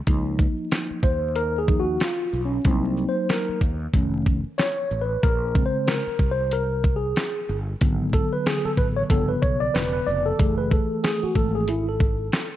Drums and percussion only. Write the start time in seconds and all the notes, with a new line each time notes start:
0.07 kick, closed hi-hat
0.39 kick, shaker
0.71 snare, closed hi-hat
1.03 kick, shaker
1.36 closed hi-hat
1.68 kick, shaker
2.00 snare, closed hi-hat
2.33 shaker
2.65 kick, closed hi-hat
2.97 shaker
3.29 snare, closed hi-hat
3.61 kick, shaker
3.93 kick, closed hi-hat
4.26 kick, shaker
4.59 snare, closed hi-hat
4.91 shaker
5.23 kick, closed hi-hat
5.55 kick, shaker
5.87 snare, closed hi-hat
6.19 kick, shaker
6.51 closed hi-hat
6.84 kick, shaker
7.16 snare, closed hi-hat
7.49 shaker
7.81 kick, closed hi-hat
8.13 kick, closed hi-hat, shaker
8.46 snare, closed hi-hat
8.77 kick, shaker
9.10 kick, closed hi-hat
9.42 kick, shaker
9.75 snare, closed hi-hat
10.07 shaker
10.39 kick, closed hi-hat
10.71 kick, shaker
11.04 snare, closed hi-hat
11.35 kick, shaker
11.68 closed hi-hat
12.00 kick, shaker
12.32 snare, closed hi-hat